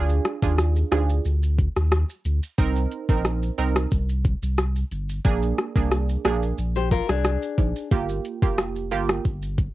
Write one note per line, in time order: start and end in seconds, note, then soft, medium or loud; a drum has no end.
0.00 0.19 D2 loud
0.00 0.38 D4 medium
0.00 0.38 F4 medium
0.00 0.39 G#4 loud
0.09 maracas medium
0.09 shaker medium
0.25 cross-stick medium
0.25 closed hi-hat medium
0.25 shaker medium
0.42 0.83 D#2 loud
0.42 0.88 D4 medium
0.42 0.88 F4 medium
0.42 0.88 G#4 medium
0.42 kick loud
0.42 maracas medium
0.42 shaker medium
0.58 cross-stick medium
0.58 shaker medium
0.58 maracas medium
0.76 shaker medium
0.76 maracas soft
0.91 1.19 D2 loud
0.91 1.22 D4 medium
0.91 1.22 F4 medium
0.91 1.23 G#4 medium
0.91 cross-stick medium
0.91 closed hi-hat medium
0.91 high timbale medium
0.91 shaker medium
1.09 shaker medium
1.09 maracas medium
1.25 1.68 D2 loud
1.25 shaker medium
1.25 maracas medium
1.43 shaker medium
1.43 maracas medium
1.58 kick medium
1.58 closed hi-hat medium
1.58 shaker medium
1.76 2.04 D#2 loud
1.76 cross-stick medium
1.76 shaker medium
1.76 maracas medium
1.91 cross-stick loud
1.91 shaker medium
1.91 maracas medium
2.09 shaker medium
2.09 maracas soft
2.25 2.40 D2 medium
2.25 closed hi-hat medium
2.25 shaker medium
2.25 maracas soft
2.43 shaker medium
2.43 maracas medium
2.58 2.86 C2 loud
2.58 3.05 C4 medium
2.58 3.05 D#4 medium
2.58 3.05 A#4 loud
2.58 kick loud
2.58 maracas medium
2.58 shaker medium
2.76 maracas medium
2.76 shaker medium
2.92 closed hi-hat medium
2.92 shaker soft
3.09 3.50 A#1 loud
3.09 3.54 C4 medium
3.09 3.55 D#4 medium
3.09 3.55 A#4 medium
3.09 kick loud
3.09 maracas medium
3.09 shaker medium
3.25 cross-stick medium
3.25 maracas medium
3.25 shaker medium
3.43 maracas soft
3.43 shaker medium
3.58 3.86 C2 medium
3.58 3.89 C4 medium
3.58 3.89 D#4 medium
3.58 3.89 A#4 medium
3.58 closed hi-hat medium
3.58 shaker soft
3.76 cross-stick loud
3.76 shaker medium
3.76 maracas medium
3.91 4.34 C2 loud
3.91 kick medium
3.91 maracas medium
3.91 shaker medium
4.09 maracas medium
4.09 shaker medium
4.25 kick medium
4.25 closed hi-hat medium
4.25 shaker medium
4.43 4.84 C2 medium
4.43 shaker medium
4.43 maracas medium
4.58 cross-stick medium
4.58 shaker medium
4.58 maracas medium
4.76 shaker medium
4.76 maracas soft
4.91 5.19 G1 medium
4.91 closed hi-hat medium
4.91 shaker medium
4.91 maracas soft
5.09 shaker medium
5.09 maracas medium
5.25 5.53 A#1 loud
5.25 5.72 A#3 loud
5.25 5.72 D4 medium
5.25 5.72 G#4 loud
5.25 kick loud
5.25 maracas medium
5.25 shaker medium
5.42 maracas medium
5.42 shaker medium
5.58 cross-stick medium
5.58 closed hi-hat medium
5.58 shaker medium
5.76 6.17 C2 medium
5.76 6.21 A#3 medium
5.76 6.21 D4 medium
5.76 6.21 G#4 medium
5.76 kick loud
5.76 maracas medium
5.76 shaker medium
5.92 cross-stick medium
5.92 shaker medium
5.92 maracas medium
6.09 maracas soft
6.09 shaker medium
6.25 6.53 A#1 medium
6.25 6.56 A#3 medium
6.25 6.56 D4 medium
6.25 6.56 G#4 medium
6.25 cross-stick loud
6.25 closed hi-hat medium
6.25 shaker soft
6.43 shaker medium
6.43 maracas medium
6.58 7.01 A#1 loud
6.58 maracas medium
6.58 shaker medium
6.76 6.91 G4 medium
6.76 6.91 C5 medium
6.76 shaker medium
6.76 maracas medium
6.92 7.09 F4 medium
6.92 7.08 A#4 medium
6.92 kick medium
6.92 closed hi-hat medium
6.92 shaker medium
7.09 7.37 C2 medium
7.09 7.88 D4 medium
7.09 7.88 G#4 medium
7.09 cross-stick medium
7.09 shaker medium
7.09 maracas medium
7.25 cross-stick loud
7.25 shaker medium
7.25 maracas medium
7.42 shaker medium
7.42 maracas medium
7.58 7.73 A#1 loud
7.58 kick loud
7.58 closed hi-hat medium
7.58 high timbale medium
7.58 shaker medium
7.58 maracas soft
7.76 maracas medium
7.76 shaker medium
7.91 8.19 G1 loud
7.91 8.38 A#3 medium
7.91 8.38 F4 medium
7.91 8.39 G4 loud
7.91 kick loud
7.91 maracas medium
7.91 shaker medium
8.09 maracas medium
8.09 shaker medium
8.25 closed hi-hat medium
8.25 shaker soft
8.42 8.93 F1 medium
8.42 8.88 A#3 medium
8.42 8.88 F4 medium
8.42 8.88 G4 medium
8.42 kick loud
8.42 maracas medium
8.42 shaker medium
8.58 cross-stick loud
8.58 shaker medium
8.58 maracas medium
8.76 shaker medium
8.76 maracas soft
8.91 9.19 G1 loud
8.91 9.22 A#3 medium
8.91 9.22 F4 medium
8.91 9.23 G4 medium
8.91 closed hi-hat medium
8.91 shaker soft
9.09 cross-stick loud
9.09 shaker medium
9.09 maracas medium
9.25 9.68 G1 loud
9.25 kick medium
9.25 shaker medium
9.25 maracas medium
9.42 shaker medium
9.42 maracas medium
9.58 kick medium
9.58 closed hi-hat medium
9.58 shaker medium